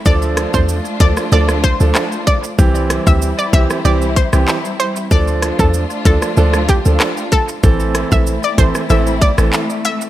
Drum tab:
HH |--x---x---x---x-|--x---x---x---x-|--x---x---x---x-|--x---x---x---x-|
SH |xxxxxxxxxxxxxxxx|xxxxxxxxxxxxxxxx|xxxxxxxxxxxxxxxx|xxxxxxxxxxxxxxxx|
CP |------------x---|------------x---|------------x---|------------x---|
SD |--r----r-r--r---|--r----r---r----|--r----r-r--r---|--r----r---r----|
BD |o--o--o---o---o-|o--o--o---o-----|o--o--o---o---o-|o--o--o---o-----|